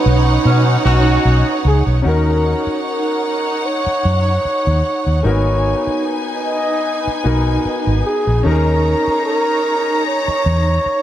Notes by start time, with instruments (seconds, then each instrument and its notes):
Already playing: grand piano C#4 D#4 F#4 B4, string machine C#4 D#4 B4, string section D#4 C#5 F#5, flugelhorn B4
0.06 fingered electric bass B1
0.45 fingered electric bass B2, horn section F#3 B3 C#4
0.85 fingered electric bass B1, horn section C#4 D#4 F#4
1.25 fingered electric bass B1
1.65 fingered electric bass C#2, flugelhorn G#4
1.87 fingered electric bass B1
2.02 fingered electric bass D#2, grand piano C#4 D#4 F#4, string section D#4 F#5
2.06 grand piano A#4, flugelhorn A#4, string section C#5
2.67 muted fingered electric bass stroke
2.88 flugelhorn A#4
3.66 flugelhorn C#5
3.87 muted fingered electric bass stroke
4.05 fingered electric bass F#2
4.45 muted fingered electric bass stroke
4.67 fingered electric bass D#2
5.07 fingered electric bass D#2
5.23 fingered electric bass G#1, grand piano A#3 D#4 F#4 A#4, string section D#4 B4 G#5, flugelhorn C#5
5.29 grand piano B3
5.87 muted fingered electric bass stroke
6.46 flugelhorn D#5
7.07 muted fingered electric bass stroke
7.24 fingered electric bass B1, grand piano B3 D#4 F#4 A#4
7.65 muted fingered electric bass stroke
7.87 fingered electric bass G#1
8.06 flugelhorn G#4
8.27 fingered electric bass A#1
8.43 fingered electric bass D#2, grand piano C#4 D#4 G4 A#4, string section D#4 C#5 A#5, flugelhorn A#4
8.52 grand piano G#4
9.07 muted fingered electric bass stroke
9.26 flugelhorn A#4
10.07 flugelhorn C#5
10.28 muted fingered electric bass stroke
10.46 fingered electric bass E2
10.86 muted fingered electric bass stroke